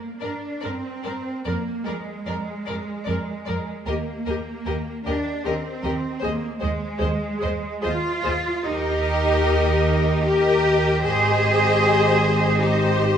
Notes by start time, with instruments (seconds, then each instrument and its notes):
Already playing: cello section A#3
0.20 double bass section G2, cello section D4, violin section A#4 D5
0.24 viola section A#4
0.61 double bass section G2, cello section C4, violin section A#4 D5, viola section A#4
1.03 double bass section G2, violin section A#4 D5, viola section A#4
1.44 double bass section F2, cello section A#3, violin section A#4 D5, viola section A#4
1.85 double bass section F2, cello section G#3, violin section A#4 D5, viola section A#4
2.26 double bass section F2, violin section A#4 D5, viola section A#4
2.66 double bass section F2, violin section A#4 D5, viola section A#4
3.05 double bass section F2, violin section A#4 D5
3.10 viola section A#4
3.45 double bass section F2, violin section A#4 D5, viola section A#4
3.86 double bass section D#2, cello section A#3, viola section G4, violin section A#4 D#5
4.26 double bass section D#2, viola section G4, violin section A#4 D#5
4.66 double bass section D#2, viola section G4, violin section A#4 D#5
5.06 double bass section D#2, cello section D4, viola section G4, violin section A#4 D#5
5.44 double bass section D#2, cello section C4, viola section G4, violin section A#4 D#5
5.83 double bass section D#2, viola section G4, violin section A#4 D#5
6.21 double bass section D#2, cello section A#3, viola section G#4, violin section C5 D#5
6.60 double bass section D#2, cello section G#3, viola section G#4, violin section C5 D#5
6.97 double bass section D#2, viola section G#4, violin section C5 D#5
7.39 double bass section D#2, viola section G#4, violin section C5 D#5
7.81 double bass section D#2, cello section F4, viola section G#4, violin section C5 D#5
8.22 double bass section D#2, viola section G#4, violin section C5 D#5
8.63 double bass section D#2, cello section D#4, viola section G4, violin section A#4 D#5
10.24 viola section G4, cello section G4, violin section A#4 D#5
11.02 double bass section G#1, viola section G4, cello section G#4, violin section C5 D#5
12.59 cello section D#4, viola section G4, violin section C5 D#5